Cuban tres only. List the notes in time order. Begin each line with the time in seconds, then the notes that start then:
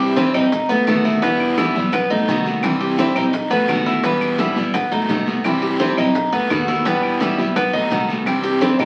0.00 G4
0.16 C4
0.34 D#4
0.69 B3
1.05 E4
1.22 B3
1.58 E4
1.93 B3
2.10 D#4
2.81 G4
2.99 C4
3.16 D#4
3.51 B3
3.86 E4
4.04 B3
4.39 E4
4.74 B3
4.92 D#4
5.62 G4
5.80 C4
5.98 D#4
6.33 B3
6.68 E4
6.85 B3
7.21 E4
7.56 B3
7.73 D#4
8.43 G4
8.61 C4
8.79 D#4